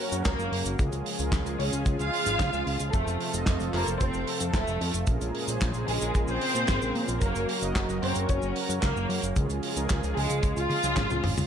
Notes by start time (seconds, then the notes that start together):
Already playing: C#3 F#3 A#3 C#4 F#4 A#4 C#5
0.00 F#3 C#4 F#4 A#4 C#5
0.12 F#2, closed hi-hat, cabasa
0.25 C#2 A#3 A#4, kick, snare, clap, closed hi-hat, cabasa
0.39 F#1 F#3 C#4 F#4 A#4 C#5, cabasa
0.52 F#2, open hi-hat
0.65 F#1, closed hi-hat, cabasa
0.79 C#2 C#3 F3 G#3 C#4 F4 G#4, kick, closed hi-hat, cabasa
0.92 C#2, closed hi-hat, cabasa
1.06 open hi-hat
1.19 C#2 C#3 G#3 C#4 F4 A#4, closed hi-hat, cabasa
1.32 C#2, kick, snare, clap, closed hi-hat, cabasa
1.46 C#2, closed hi-hat, cabasa
1.59 C#2 C#3 G#3 C#4 F4 G#4 C#5, open hi-hat
1.73 C#2, closed hi-hat, cabasa
1.86 C#2, kick, closed hi-hat, cabasa
1.99 C#2 F4 F5, closed hi-hat, cabasa
2.13 C#3 G#3 C#4 F4 G#4, open hi-hat
2.26 G#1, snare, closed hi-hat, cabasa
2.40 C#2, kick, snare, clap, closed hi-hat, cabasa
2.53 C#2 C#3 G#3 C#4 F4 G#4, cabasa
2.67 C#2, open hi-hat
2.79 C#2, closed hi-hat, cabasa
2.93 F1 C3 F3 A3 C4 F4 A4 C5, kick, closed hi-hat, cabasa
3.07 F1, closed hi-hat, cabasa
3.20 open hi-hat
3.33 F1 F3 C4 F4 A4 D#5, closed hi-hat, cabasa
3.46 F1, kick, snare, clap, closed hi-hat, cabasa
3.60 F1, closed hi-hat, cabasa
3.73 F1 F3 A#3 C4 F4 A4 A#4 C5, clap, open hi-hat
3.87 F1, closed hi-hat, cabasa
4.00 F1 C4 C5, kick, closed hi-hat, cabasa
4.14 F1, cabasa
4.27 F3 C4 F4 A4 C5, open hi-hat
4.40 F2, closed hi-hat, cabasa
4.54 D#1 A3 A4, kick, snare, clap, closed hi-hat, cabasa
4.67 F1 F3 C4 F4 A4 C5, cabasa
4.81 F2, open hi-hat
4.94 F1, closed hi-hat, cabasa
5.07 A#1 A#2 C#3 G#3 A#3 C#4 F4 G#4 A#4, kick, closed hi-hat, cabasa
5.21 A#1, closed hi-hat, cabasa
5.35 open hi-hat
5.48 A#1 A#2 C#4 F4 G#4 C5, closed hi-hat, cabasa
5.61 A#1, kick, snare, clap, closed hi-hat, cabasa
5.74 A#1, closed hi-hat, cabasa
5.88 A#1 A#2 G#3 C#4 F4 G#4 A#4, open hi-hat
6.01 A#1, closed hi-hat, cabasa
6.15 A#1, kick, closed hi-hat, cabasa
6.28 A#1 C4 C5, cabasa
6.41 A#2 C#3 F4 G#4 A#4, open hi-hat
6.55 A#2, closed hi-hat, cabasa
6.68 G#1, kick, snare, clap, closed hi-hat, cabasa
6.82 A#1 A#2 C#4 F4 G#4 A#4, cabasa
6.95 A#2, open hi-hat
7.08 A#1, closed hi-hat, cabasa
7.21 F#1 C#3 F#3 A#3 C#4 F#4 A#4 C#5, kick, closed hi-hat, cabasa
7.35 F#1, closed hi-hat, cabasa
7.49 open hi-hat
7.61 F#1 F#3 C#4 F#4 A#4 D#5, closed hi-hat, cabasa
7.76 F#1, kick, snare, clap, closed hi-hat, cabasa
7.89 F#1, closed hi-hat, cabasa
8.02 F#1 F#3 C4 C#4 F#4 A#4 C5 C#5, clap, open hi-hat
8.15 F#1, closed hi-hat, cabasa
8.29 F#1 C#4 C#5, kick, closed hi-hat, cabasa
8.42 F#1, cabasa
8.56 F#3 C#4 F#4 A#4 C#5, open hi-hat
8.69 F#2, closed hi-hat, cabasa
8.83 C#2 A#3 A#4, kick, snare, clap, closed hi-hat, cabasa
8.96 F#1 F#3 C#4 F#4 A#4 C#5, cabasa
9.09 F#2, open hi-hat
9.22 F#1, closed hi-hat, cabasa
9.36 C#2 C#3 F3 G#3 C#4 F4 G#4, kick, closed hi-hat, cabasa
9.50 C#2, closed hi-hat, cabasa
9.63 open hi-hat
9.76 C#2 C#3 G#3 C#4 F4 A#4, closed hi-hat, cabasa
9.89 C#2, kick, snare, clap, closed hi-hat, cabasa
10.03 C#2, closed hi-hat, cabasa
10.16 C#2 C#3 G#3 C#4 F4 G#4, open hi-hat
10.30 C#2, closed hi-hat, cabasa
10.43 C#2, kick, closed hi-hat, cabasa
10.57 C#2 F4, closed hi-hat, cabasa
10.70 C#3 G#3 C#4 F4 G#4, open hi-hat, high tom
10.83 C#2 C#3 G#3 C#4 F4 G#4, snare, closed hi-hat, cabasa
10.96 G#1, kick, snare, clap, closed hi-hat, mid tom, cabasa
11.10 C#2 C#3 G#3 C#4 F4 G#4, mid tom, cabasa
11.24 G#1, mid tom, open hi-hat
11.37 C#2, mid tom, open hi-hat, cabasa